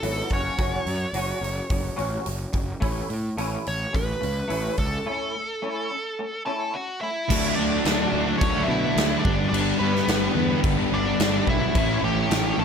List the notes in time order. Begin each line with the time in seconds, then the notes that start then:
Already playing: A4
0.02 G#1 E3 F#3 B3, open hi-hat
0.30 F#1 F#3 C#4 F#4 C#5, kick, open hi-hat
0.58 F#1 F#3 C#4 F#4, kick, open hi-hat
0.86 F#2 F#3 C#4, open hi-hat
1.13 F#1 F#3 C#4 F#4, open hi-hat
1.41 F#1 F#3 C#4, open hi-hat
1.70 F#1 F#3 C#4, kick, open hi-hat
1.96 A1 F#3 C#4 F#4, open hi-hat
2.25 F#1 F#3 C#4, open hi-hat
2.53 F#1 F#3 C#4, kick, open hi-hat
2.80 A1 A3 C#4 E4, kick, open hi-hat
3.08 A2 A3 C#4, open hi-hat
3.37 A1 A3 C#4 E4, open hi-hat
3.65 A1 A3 C#4 C#5, open hi-hat
3.93 A1 A3 C#4 B4, kick, open hi-hat
4.21 C#2 A3 C#4, open hi-hat
4.48 A1 A3 C#4 E4, open hi-hat
4.77 C#2 A3 C#4 A4, kick, open hi-hat
5.06 A3 C#4 E4
5.35 A3 C#4
5.62 A3 C#4 E4
5.91 A3 C#4
6.19 A3 C#4
6.46 A3 C#4 E4 A4 A5
6.74 A3 C#4 F#4 F#5
7.01 A3 C#4 E4 E5
7.27 D3 F#3 A3 E4 D5 F#5 A5, kick, crash
7.31 D2 D4
7.55 D2 D3 F#3 A3 D4 D5
7.71 F#3 A3 D4
7.85 D2 D3 F#3 A3 D4, snare, crash
8.13 D2 D3 F#3 A3 D4
8.28 F#3 A3 D4
8.38 C#5, kick, crash
8.42 D2 C#4
8.55 F#3 A3 D4
8.63 E5
8.68 B2 D3 F#3 A3 D4 E4
8.84 F#3 A3 D4
8.96 D2 D3 F#3 A3 D4, snare, crash
9.10 F#3 A3 D4
9.19 D4 D5
9.23 G1 G2 D3 G3 B3 D4 B4 G5 B5, kick
9.37 G3 B3 D4
9.49 G1 G2 D3 G3 D5
9.53 B3 D4, crash
9.79 G2 D3 G3 B3 D4 B4
9.94 G3 B3 D4, snare
10.07 G1 G2 D3 G3 B3 D4, snare, crash
10.34 E2 D3 G3 B3 D4
10.48 G3 B3 D4
10.64 G1, kick, crash
10.76 G3 B3 D4
10.89 G1 D3 G3 B3 D4
10.94 D4 D5
11.03 G3 B3 D4
11.18 G1 G2 D3 G3 B3 D4, snare, crash
11.32 G3 B3 D4
11.46 B1 D3 G3 B3 D4 E4 E5, kick
11.61 G3 B3 D4
11.73 A1 A2 E3 A3 C#4 E4 C#5 A5 C#6, kick, crash
12.02 A1 E3 A3 C#4 E4 G4 G5
12.15 A3 C#4 E4
12.30 A1 A2 E3 A3 C#4 E4, snare, crash
12.58 A1 E3 A3 C#4 E4 A4 A5